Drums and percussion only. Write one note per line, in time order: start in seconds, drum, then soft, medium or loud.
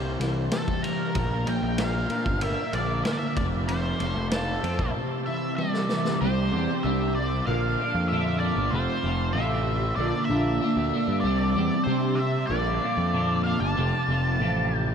0.21 snare soft
0.21 ride medium
0.51 snare loud
0.51 ride medium
0.68 kick medium
0.84 ride medium
1.15 kick medium
1.15 ride medium
1.47 ride medium
1.78 snare loud
1.78 ride medium
2.10 ride soft
2.26 kick medium
2.41 ride medium
2.73 ride medium
3.05 snare loud
3.05 ride medium
3.37 kick loud
3.37 ride medium
3.68 ride medium
4.00 ride medium
4.31 snare loud
4.31 ride medium
4.64 ride medium
4.79 kick medium
5.58 high tom medium
5.74 snare medium
5.89 snare medium
6.05 snare medium